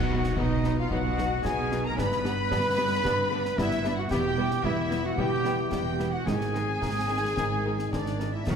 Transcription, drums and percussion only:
0.24 snare soft
0.36 concert bass drum medium
0.64 snare soft
0.91 concert bass drum medium
1.18 snare soft
1.45 concert bass drum medium
1.45 snare medium
1.71 snare soft
1.98 concert bass drum medium
1.98 snare medium
2.12 snare soft
2.25 snare soft
2.51 concert bass drum medium
2.51 snare medium
3.05 concert bass drum medium
3.05 snare medium
3.45 snare soft
3.58 concert bass drum medium
3.58 snare medium
3.71 snare soft
3.84 snare soft
4.11 concert bass drum medium
4.11 snare medium
4.51 snare soft
4.64 concert bass drum medium
4.91 snare soft
5.18 concert bass drum medium
5.45 snare soft
5.72 concert bass drum medium
5.72 snare medium
6.00 snare soft
6.27 concert bass drum medium
6.27 snare medium
6.41 snare soft
6.55 snare soft
6.82 concert bass drum medium
6.82 snare medium
7.37 concert bass drum medium
7.37 snare medium
7.79 snare soft
7.93 concert bass drum medium
7.93 snare medium
8.06 snare soft
8.20 snare soft
8.47 concert bass drum medium
8.47 snare medium
8.47 crash soft

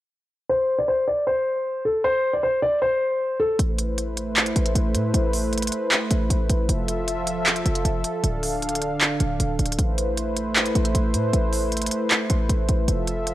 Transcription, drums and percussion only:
3.59 closed hi-hat medium
3.79 closed hi-hat medium
3.98 closed hi-hat medium
4.17 closed hi-hat medium
4.37 clap loud
4.37 closed hi-hat medium
4.46 closed hi-hat medium
4.56 closed hi-hat medium
4.66 closed hi-hat medium
4.75 closed hi-hat medium
4.95 closed hi-hat medium
5.14 closed hi-hat medium
5.33 open hi-hat medium
5.53 closed hi-hat medium
5.58 closed hi-hat medium
5.62 closed hi-hat medium
5.67 closed hi-hat medium
5.72 closed hi-hat medium
5.91 clap loud
5.91 closed hi-hat medium
6.11 closed hi-hat medium
6.30 closed hi-hat medium
6.49 closed hi-hat medium
6.69 closed hi-hat medium
6.88 closed hi-hat medium
7.08 closed hi-hat medium
7.27 closed hi-hat medium
7.46 clap loud
7.46 closed hi-hat medium
7.56 closed hi-hat medium
7.66 closed hi-hat medium
7.75 closed hi-hat medium
7.85 closed hi-hat medium
8.04 closed hi-hat medium
8.24 closed hi-hat medium
8.43 open hi-hat medium
8.62 closed hi-hat medium
8.69 closed hi-hat medium
8.75 closed hi-hat medium
8.82 closed hi-hat medium
9.01 clap loud
9.01 closed hi-hat medium
9.20 closed hi-hat medium
9.40 closed hi-hat medium
9.59 closed hi-hat soft
9.66 closed hi-hat medium
9.72 closed hi-hat medium
9.79 closed hi-hat medium
9.98 closed hi-hat medium
10.17 closed hi-hat medium
10.36 closed hi-hat medium
10.56 clap loud
10.56 closed hi-hat medium
10.66 closed hi-hat medium
10.75 closed hi-hat medium
10.85 closed hi-hat medium
10.95 closed hi-hat medium
11.14 closed hi-hat medium
11.33 closed hi-hat medium
11.53 open hi-hat medium
11.72 closed hi-hat medium
11.77 closed hi-hat medium
11.82 closed hi-hat medium
11.87 closed hi-hat medium
11.91 closed hi-hat medium
12.11 clap loud
12.11 closed hi-hat medium
12.30 closed hi-hat medium
12.50 closed hi-hat medium
12.69 closed hi-hat medium
12.88 closed hi-hat medium
13.08 closed hi-hat medium
13.27 closed hi-hat medium

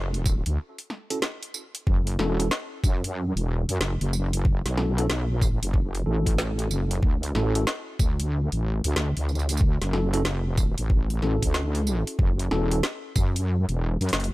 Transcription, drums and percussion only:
0.14 closed hi-hat soft
0.26 kick loud
0.26 tambourine medium
0.46 closed hi-hat medium
0.78 closed hi-hat soft
0.90 snare soft
1.10 closed hi-hat medium
1.22 snare loud
1.43 closed hi-hat medium
1.54 tambourine medium
1.75 closed hi-hat medium
1.87 kick loud
2.07 closed hi-hat medium
2.19 snare medium
2.40 closed hi-hat medium
2.51 snare loud
2.84 kick loud
2.84 tambourine medium
3.04 closed hi-hat medium
3.37 closed hi-hat soft
3.69 closed hi-hat medium
3.81 snare loud
4.01 closed hi-hat medium
4.13 tambourine medium
4.33 closed hi-hat medium
4.45 kick loud
4.66 snare soft
4.66 closed hi-hat medium
4.78 snare medium
4.98 closed hi-hat medium
5.10 snare loud
5.42 kick loud
5.42 tambourine medium
5.63 closed hi-hat medium
5.74 kick loud
5.95 closed hi-hat soft
6.26 kick medium
6.26 closed hi-hat medium
6.38 snare loud
6.59 closed hi-hat medium
6.71 tambourine medium
6.91 closed hi-hat medium
7.03 kick loud
7.23 closed hi-hat medium
7.35 snare medium
7.55 closed hi-hat medium
7.67 snare loud
7.99 kick loud
7.99 tambourine medium
8.20 closed hi-hat medium
8.52 closed hi-hat soft
8.84 closed hi-hat medium
8.96 snare loud
9.17 closed hi-hat medium
9.29 tambourine soft
9.35 tambourine soft
9.39 tambourine soft
9.49 closed hi-hat medium
9.49 tambourine soft
9.57 kick loud
9.57 tambourine medium
9.82 snare soft
9.82 closed hi-hat medium
9.93 snare soft
10.14 closed hi-hat medium
10.25 snare loud
10.57 kick loud
10.57 tambourine medium
10.78 closed hi-hat medium
10.90 kick loud
11.10 closed hi-hat soft
11.22 snare soft
11.42 kick medium
11.42 closed hi-hat medium
11.54 snare loud
11.75 closed hi-hat medium
11.87 tambourine medium
12.07 closed hi-hat medium
12.19 kick loud
12.39 closed hi-hat medium
12.51 snare medium
12.71 closed hi-hat medium
12.83 snare loud
13.16 kick loud
13.16 tambourine medium
13.36 closed hi-hat medium
13.69 closed hi-hat soft
14.01 closed hi-hat soft
14.09 closed hi-hat soft
14.13 snare loud
14.13 closed hi-hat soft
14.20 closed hi-hat soft
14.24 closed hi-hat medium

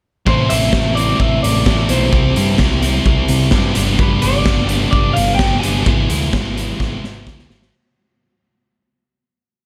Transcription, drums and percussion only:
0.27 kick medium
0.50 closed hi-hat medium
0.73 kick medium
0.73 snare medium
0.97 closed hi-hat medium
1.20 kick medium
1.44 closed hi-hat medium
1.66 kick medium
1.66 snare medium
1.89 closed hi-hat medium
2.13 kick loud
2.36 closed hi-hat medium
2.58 kick medium
2.58 snare medium
2.82 closed hi-hat medium
3.06 kick medium
3.28 closed hi-hat medium
3.51 kick loud
3.51 snare medium
3.75 closed hi-hat medium
3.99 kick loud
4.22 closed hi-hat medium
4.46 kick loud
4.46 snare loud
4.69 closed hi-hat medium
4.93 kick medium
5.16 closed hi-hat medium
5.39 kick medium
5.39 snare medium
5.63 closed hi-hat medium
5.86 kick loud
6.10 closed hi-hat medium
6.33 kick medium
6.33 snare loud
6.57 closed hi-hat medium
6.80 kick medium
6.80 snare soft
7.04 snare medium
7.27 kick medium
7.27 snare medium
7.39 snare medium
7.50 snare medium
7.62 snare medium

